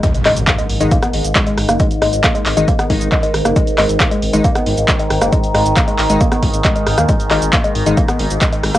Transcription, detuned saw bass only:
0.25 0.33 G#1 medium
0.36 0.44 G#1 medium
0.69 0.77 G#1 medium
0.81 0.88 G#1 medium
1.14 1.21 G#1 loud
1.25 1.32 G#1 medium
1.58 1.65 G#1 medium
1.69 1.76 F#1 medium
2.02 2.09 G#1 medium
2.13 2.20 G#1 medium
2.46 2.53 G#1 medium
2.57 2.64 G#1 medium
2.90 2.97 G#1 loud
3.01 3.08 G#1 medium
3.34 3.41 G#1 medium
3.45 3.52 F#1 medium
3.78 3.86 G#1 medium
3.89 3.97 G#1 medium
4.22 4.30 G#1 medium
4.33 4.41 G#1 medium
4.66 4.74 G#1 loud
4.77 4.85 G#1 medium
5.11 5.18 G#1 medium
5.22 5.29 F#1 medium
5.55 5.62 G#1 medium
5.66 5.73 G#1 medium
5.99 6.06 G#1 medium
6.10 6.17 G#1 medium
6.43 6.50 G#1 medium
6.54 6.61 G#1 medium
6.87 6.94 G#1 medium
6.98 7.05 D#2 medium
7.31 7.38 G#1 loud
7.42 7.49 G#1 medium
7.75 7.83 G#1 medium
7.86 7.94 G#1 medium
8.19 8.27 G#1 medium
8.30 8.38 G#1 medium
8.63 8.71 G#1 medium
8.75 8.79 F#1 medium

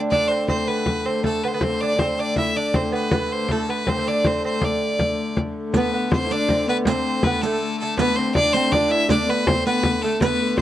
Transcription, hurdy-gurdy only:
0.00 1.23 D3 medium
0.00 1.24 A3 medium
1.23 5.75 D3 medium
1.23 5.74 A3 medium
5.74 10.21 D3 medium
5.74 10.21 A3 medium
10.21 10.61 D3 medium
10.21 10.61 A3 medium

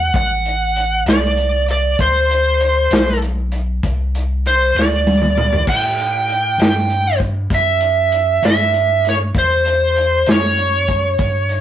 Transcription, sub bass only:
0.00 0.11 E2 medium
0.14 1.03 A1 medium
1.06 1.96 C2 medium
1.99 2.88 D2 medium
2.91 3.80 B1 medium
3.83 4.72 C2 medium
4.75 5.64 D2 medium
5.67 6.56 A2 medium
6.58 7.48 G2 medium
7.50 8.40 F#2 medium
8.42 9.32 G2 medium
9.35 10.24 E2 medium
10.27 11.17 F#2 medium
11.19 11.61 G2 medium

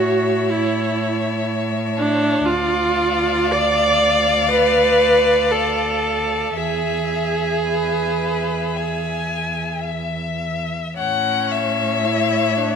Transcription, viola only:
0.00 0.51 F#4 medium
0.49 1.47 E4 medium
1.97 2.47 D4 medium
2.45 3.53 F4 medium
3.51 4.50 D5 medium
4.51 5.52 B4 medium
5.51 6.58 A4 medium
6.56 9.86 G#4 medium
10.99 12.07 C#4 medium
12.06 12.59 E4 medium
12.57 12.76 D4 medium

